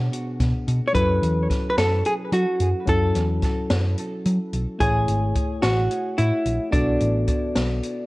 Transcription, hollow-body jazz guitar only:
0.88 0.94 C#5 medium
0.95 1.69 B4 loud
1.70 1.77 B4 medium
1.78 2.03 A4 medium
2.06 2.14 G#4 medium
2.34 2.90 F#4 medium
2.89 3.94 A4 medium
4.80 5.62 G#4 loud
5.62 6.19 F#4 medium
6.18 6.72 E4 medium
6.73 8.06 D4 medium

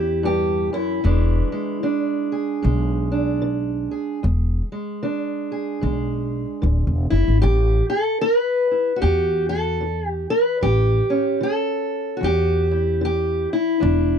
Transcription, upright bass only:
0.00 0.67 E2 medium
1.05 1.41 E1 medium
2.64 3.86 B1 medium
4.24 4.61 E1 medium
5.83 6.44 B1 medium
6.63 6.85 D1 medium
6.87 7.09 E1 medium
7.12 7.26 F#1 medium
7.28 7.42 G#1 medium
7.43 7.80 A1 loud
9.03 10.25 E2 medium
10.63 11.00 A1 loud
12.23 13.45 E2 medium
13.83 14.19 E1 medium

